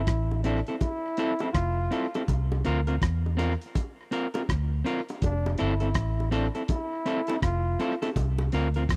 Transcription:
Already playing: E4
0.07 A1, kick, cross-stick, closed hi-hat
0.31 high bongo
0.43 C4 D4 E4 A4, closed hi-hat, high bongo
0.67 C4 E4 A4, closed hi-hat
0.80 E4, kick, closed hi-hat, high bongo
1.17 C4 E4 A4, closed hi-hat
1.39 C4 E4 A4, closed hi-hat, high bongo
1.53 F1 F4, kick, cross-stick, closed hi-hat
1.91 C4 E4 A4, closed hi-hat, low bongo
2.14 C4 E4 A4, closed hi-hat, high bongo
2.28 C2, kick, closed hi-hat, high bongo
2.52 high bongo
2.65 D2 C4 F4 A#4, closed hi-hat
2.87 C4 F4 A#4, closed hi-hat
3.02 E2, kick, cross-stick, closed hi-hat
3.26 high bongo
3.37 C4 F4 A#4, closed hi-hat, high bongo
3.62 closed hi-hat
3.75 kick, closed hi-hat, high bongo
4.11 C4 F4 A#4, closed hi-hat
4.34 C4 F4 A#4, closed hi-hat, high bongo
4.49 D2, kick, cross-stick, closed hi-hat
4.84 C4 F4 A#4, closed hi-hat, low bongo
5.09 closed hi-hat, high bongo
5.22 F1 D4, kick, closed hi-hat, high bongo
5.46 high bongo
5.57 G1 C4 E4 A4, closed hi-hat
5.80 C4 E4 A4, closed hi-hat
5.94 A1, kick, cross-stick, closed hi-hat
6.20 high bongo
6.31 C4 D4 E4 A4, closed hi-hat, high bongo
6.55 C4 E4 A4, closed hi-hat
6.68 E4, kick, closed hi-hat, high bongo
7.06 C4 E4 A4, closed hi-hat
7.27 C4 E4 A4, closed hi-hat, high bongo
7.42 F1 F4, kick, cross-stick, closed hi-hat
7.79 C4 E4 A4, closed hi-hat, low bongo
8.02 C4 E4 A4, closed hi-hat, high bongo
8.16 C2, kick, closed hi-hat, high bongo
8.38 high bongo
8.52 D2 C4 F4 A#4, closed hi-hat
8.74 C4 F4 A#4, closed hi-hat
8.89 E2, kick, cross-stick, closed hi-hat

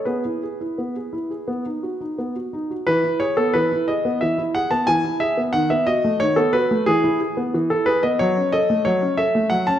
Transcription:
0.05 B3 G#4 B4
0.25 E4
0.43 G#4
0.61 E4
0.78 B3
0.96 G#4
1.13 E4
1.31 G#4
1.48 B3
1.66 D#4
1.83 F#4
2.01 D#4
2.18 B3
2.36 F#4
2.53 D#4
2.70 F#4
2.87 E3 B4
3.20 G#4 C#5
3.37 B3 A4
3.54 E3 B4
3.88 G#4 D#5
4.05 B3
4.21 E3 E5
4.38 E4
4.55 G#4 F#5
4.71 B3 A5
4.87 E3 G#5
5.04 E4
5.20 G#4 E5
5.37 B3
5.53 D#3 F#5
5.70 B3 E5
5.87 F#4 D#5
6.04 A3
6.20 D#3 C#5
6.36 B3 A4
6.53 F#4 B4
6.71 A3
6.86 E3 G#4
7.04 E4
7.21 G#4
7.37 B3
7.54 E3
7.70 E4 A4
7.86 G#4 B4
8.03 B3 D#5
8.19 F#3 C#5
8.37 C#4
8.52 A4 D#5
8.70 A3
8.85 F#3 C#5
9.02 C#4
9.17 A4 E5
9.35 A3
9.50 F#3 F#5
9.67 C#4 A5

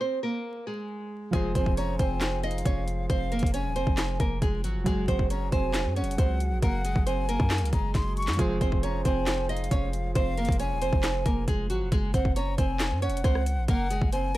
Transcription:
0.01 C4 C5
0.23 A#3 A#4
0.67 G#3 G#4
1.31 F1 F3 G#3 F4 G#4, kick, closed hi-hat
1.35 C5
1.55 F1 C4 C5 G#5, kick, closed hi-hat
1.66 kick
1.77 C#4 C#5 A#5, closed hi-hat
1.99 F1 C4 C5 G#5, kick, closed hi-hat
2.21 snare, clap, closed hi-hat
2.43 D#4 D#5 F5, closed hi-hat
2.51 closed hi-hat
2.58 closed hi-hat
2.66 F1 C#4 C#5, kick, closed hi-hat
2.88 closed hi-hat
3.10 F1 C4 C5 F5, kick, closed hi-hat
3.32 A#3 A#4, closed hi-hat
3.39 F1, kick, closed hi-hat
3.46 closed hi-hat
3.54 C#4 C#5 G#5, closed hi-hat
3.65 D#1
3.76 F1 C4 C5, closed hi-hat
3.87 F1, kick
3.97 snare, clap, closed hi-hat
4.20 F1 A#3 A#4, kick, closed hi-hat
4.42 F1 G#3 G#4, kick, closed hi-hat
4.64 G#1 F#3 F#4, closed hi-hat
4.75 F1
4.84 F#1 F#3 G#3 F#4 G#4, kick, closed hi-hat
5.08 F#1 C4 C5 F#5, kick, closed hi-hat
5.19 kick
5.30 C#4 C#5 A#5, closed hi-hat
5.52 F1 C4 C5 G#5, kick, closed hi-hat
5.74 snare, clap, closed hi-hat
5.85 F#2
5.96 C#4 C#5 F#5, closed hi-hat
6.02 F1, closed hi-hat
6.11 closed hi-hat
6.18 C#2 C4 C5, kick, closed hi-hat
6.40 closed hi-hat
6.51 A#1
6.62 F#1 A#3 A#4 F#5, kick, closed hi-hat
6.85 G#3 G#4, closed hi-hat
6.96 F#1, kick
7.06 C4 C5 G#5, closed hi-hat
7.29 A#3 A#4, closed hi-hat
7.40 F#2, kick
7.50 snare, clap, closed hi-hat
7.58 C#2, closed hi-hat
7.66 closed hi-hat
7.73 F#1 G#3 G#4 A#5, kick, closed hi-hat
7.95 F#1 C6, kick, snare, closed hi-hat
8.17 C#6, closed hi-hat
8.22 closed hi-hat
8.28 F#2, snare, clap, closed hi-hat
8.33 F3, closed hi-hat
8.38 F1 G#3 F4 G#4 C5, kick, closed hi-hat
8.61 F1 C4 C5 G#5, kick, closed hi-hat
8.72 kick
8.83 C#4 C#5 A#5, closed hi-hat
9.05 F1 C4 C5 G#5, kick, closed hi-hat
9.27 snare, clap, closed hi-hat
9.49 D#4 D#5 F5, closed hi-hat
9.57 closed hi-hat
9.64 closed hi-hat
9.71 F1 C#4 C#5, kick, closed hi-hat
9.93 closed hi-hat
10.15 F1 C4 C5 F5, kick, closed hi-hat
10.37 A#3 A#4, closed hi-hat
10.45 F1, kick, closed hi-hat
10.52 closed hi-hat
10.59 C#4 C#5 G#5, closed hi-hat
10.71 D#1
10.82 F1 C4 C5, closed hi-hat
10.93 F1, kick
11.03 snare, clap, closed hi-hat
11.26 F1 A#3 A#4, kick, closed hi-hat
11.48 F1 G#3 G#4, kick, closed hi-hat
11.70 G#1 F#3 F#4, closed hi-hat
11.81 F1
11.92 F#1 G#3 G#4, kick, closed hi-hat
12.14 F#1 C4 C5 F#5, kick, closed hi-hat
12.25 kick
12.36 C#4 C#5 A#5, closed hi-hat
12.58 F1 C4 C5 G#5, kick, closed hi-hat
12.80 snare, clap, closed hi-hat
12.91 F#2
13.02 C#4 C#5 F#5, closed hi-hat
13.08 F1, closed hi-hat
13.17 closed hi-hat
13.24 C#2 C4 C5, kick, cross-stick, closed hi-hat
13.35 cross-stick
13.46 closed hi-hat
13.57 A#1
13.68 F#1 A#3 A#4 F#5, kick, closed hi-hat
13.90 G#3 G#4, closed hi-hat
14.01 F#1, kick
14.12 C4 C5 G#5, closed hi-hat

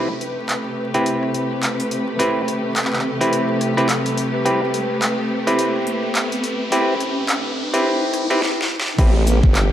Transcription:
Already playing: C3 A3 G4 B4, riser
0.21 closed hi-hat
0.49 clap, closed hi-hat
0.94 C4 E4 G4 B4, closed hi-hat
1.06 closed hi-hat
1.23 cross-stick
1.34 closed hi-hat
1.63 clap, closed hi-hat
1.80 closed hi-hat
1.91 closed hi-hat
2.19 C4 E4 G4 B4, closed hi-hat
2.48 cross-stick, closed hi-hat
2.76 clap, closed hi-hat
2.85 clap
2.93 clap
2.99 clap
3.21 C4 E4 G4 B4, closed hi-hat
3.33 closed hi-hat
3.61 cross-stick, closed hi-hat
3.77 C4 E4 G4 B4, closed hi-hat
3.89 clap, closed hi-hat
4.06 cross-stick, closed hi-hat
4.17 closed hi-hat
4.45 C4 E4 G4 B4, closed hi-hat
4.74 closed hi-hat
5.02 clap, closed hi-hat
5.47 C4 E4 G4 B4, closed hi-hat
5.59 closed hi-hat
5.76 cross-stick
5.87 closed hi-hat
6.15 clap, closed hi-hat
6.32 closed hi-hat
6.44 closed hi-hat
6.72 C4 E4 G4 B4, closed hi-hat
7.00 cross-stick, closed hi-hat
7.29 clap, closed hi-hat
7.73 C4 E4 G4 B4, closed hi-hat
8.14 cross-stick, closed hi-hat
8.30 C4 E4 G4 B4, closed hi-hat
8.42 snare
8.61 snare
8.80 snare
8.98 A1 C3 C4 E4 G4 B4, kick, closed hi-hat, crash, downlifter
9.27 closed hi-hat, shaker
9.43 G1, kick
9.55 clap, closed hi-hat

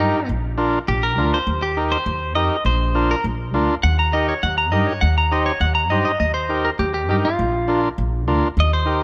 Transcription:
0.00 G2 D#4 G4 A#4
0.29 A#1
0.58 D4 F4 A#4
0.88 A#1 G4
1.03 A#4
1.17 D2 D4 F4 A#4
1.34 C5
1.47 D#2
1.62 G4
1.77 D#4 G4 A#4
1.92 C5
2.06 D#2
2.35 F2 D#4 G4 A#4 D#5
2.65 A#1 C5
2.95 D4 F4 A#4
3.11 A#4
3.24 A#1
3.53 D2 D4 F4 A#4
3.83 D#2 F#5
3.99 A#5
4.13 D#4 G4 A#4 D#5
4.29 C#5
4.43 D#2 F#5
4.58 A#5
4.72 G2 D#4 G4 A#4 D#5
4.87 C#5
5.01 D#2 F#5
5.18 A#5
5.31 D#4 G4 C5 D#5
5.46 C#5
5.60 D#2 F#5
5.75 A#5
5.90 G2 D#4 G4 C5 D#5
6.05 D#5
6.20 D#2 D#5
6.34 C5
6.49 D#4 G4 A#4
6.65 A#4
6.79 D#2 G4
6.94 G4
7.09 G2 D#4 G4 A#4
7.25 F4
7.39 A#1
7.68 D4 F4 A#4
7.98 A#1
8.28 D2 D4 F4 A#4
8.57 D#2 D#5
8.73 C5
8.85 D#4 G4 A#4

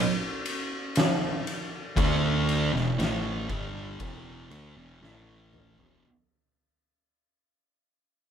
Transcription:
0.45 ride
0.95 snare, ride
1.47 ride
1.96 D2 D3 A3 D4, kick, ride
2.49 ride
2.73 E1 E2 B2, snare
2.98 A1 A2 E3 A3, snare, ride
3.49 G1 G2 D3 G3, kick, ride
4.00 E1 E2 B2 E3, kick, ride
4.50 D2 D3 A3, ride
4.75 E1 E2 B2
5.02 A1 A2 E3 A3, snare
5.53 mid tom
5.78 E1 E2 B2, floor tom

